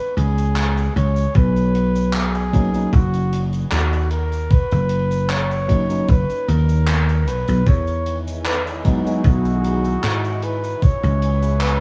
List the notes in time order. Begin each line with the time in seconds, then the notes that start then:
Already playing: B4
0.17 C#2 G#4, closed hi-hat
0.38 closed hi-hat, cabasa
0.56 clap, closed hi-hat, cabasa
0.77 closed hi-hat, cabasa
0.96 C#2 C#5, closed hi-hat
1.16 closed hi-hat, cabasa
1.35 B1 B4, kick, closed hi-hat, cabasa
1.56 closed hi-hat, cabasa
1.75 closed hi-hat
1.95 closed hi-hat, cabasa
2.13 G#4, clap, closed hi-hat, cabasa
2.35 closed hi-hat, cabasa
2.52 F#3 A#3 C#4 D#4, kick, closed hi-hat
2.74 F#3 A#3 C#4 D#4, closed hi-hat, cabasa
2.93 F#1 F#4, kick, closed hi-hat, cabasa
3.14 closed hi-hat, cabasa
3.33 closed hi-hat
3.53 closed hi-hat, cabasa
3.71 D#2 F#4, clap, closed hi-hat, cabasa
3.93 closed hi-hat, cabasa
4.11 A#4, closed hi-hat
4.32 closed hi-hat, cabasa
4.50 B4, kick, closed hi-hat, cabasa
4.71 F#1, closed hi-hat, cabasa
4.89 closed hi-hat
5.11 closed hi-hat, cabasa
5.29 C#5, clap, closed hi-hat, cabasa
5.51 closed hi-hat, cabasa
5.68 F#3 A#3 C#4 D#4, kick, closed hi-hat
5.89 F#3 A#3 C#4 D#4, closed hi-hat, cabasa
6.08 F#1 B4, kick, closed hi-hat, cabasa
6.30 closed hi-hat, cabasa
6.48 D#2 A#4, closed hi-hat
6.69 closed hi-hat, cabasa
6.87 clap, closed hi-hat, cabasa
7.09 closed hi-hat, cabasa
7.27 B1 B4, closed hi-hat
7.48 B1, closed hi-hat, cabasa
7.66 E2 D#4 E4 G#4 C#5, kick, closed hi-hat, cabasa
7.87 closed hi-hat, cabasa
8.06 closed hi-hat
8.27 closed hi-hat, cabasa
8.45 B4, clap, closed hi-hat, cabasa
8.67 closed hi-hat, cabasa
8.84 F#3 G#3 B3 D#4 F#4, kick, closed hi-hat
9.05 F#3 G#3 B3 D#4, closed hi-hat, cabasa
9.24 B1, kick, closed hi-hat, cabasa
9.45 closed hi-hat, cabasa
9.64 closed hi-hat
9.84 closed hi-hat, cabasa
10.03 G#2, clap, closed hi-hat, cabasa
10.24 closed hi-hat, cabasa
10.42 B4, closed hi-hat
10.64 closed hi-hat, cabasa
10.82 C#4 G#4 B4 C#5 E5, muted slap bass stroke, kick, closed hi-hat, cabasa
11.03 C#2, closed hi-hat, cabasa
11.22 closed hi-hat
11.42 closed hi-hat, cabasa
11.61 B4, clap, closed hi-hat, cabasa